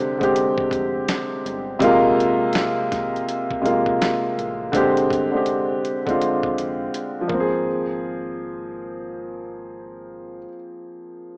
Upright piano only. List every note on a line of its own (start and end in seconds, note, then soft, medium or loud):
0.00 1.79 C3 medium
0.00 0.18 D3 loud
0.00 0.20 G#3 medium
0.00 0.22 C4 medium
0.00 0.23 G4 medium
0.18 1.47 D3 medium
0.18 1.48 G#3 medium
0.18 1.49 C4 medium
0.23 1.49 G4 medium
1.79 3.15 C3 loud
1.79 3.16 G#3 medium
1.79 3.17 A#3 loud
1.84 3.17 F4 loud
3.62 4.64 C3 medium
3.62 4.65 G#3 medium
3.62 4.65 A#3 medium
3.66 4.66 F4 medium
4.72 5.25 D3 medium
4.72 5.26 G#3 medium
4.72 5.27 C4 medium
4.77 5.27 G4 medium
5.32 5.96 D3 medium
5.32 5.97 G#3 medium
5.32 5.98 C4 medium
5.37 5.98 G4 medium
6.06 7.29 D3 medium
6.06 7.30 G#3 medium
6.06 7.31 C4 medium
6.10 7.32 F4 medium
7.21 10.37 F3 medium
7.28 10.43 A#3 medium
7.34 10.49 C4 medium
7.40 10.56 G#4 medium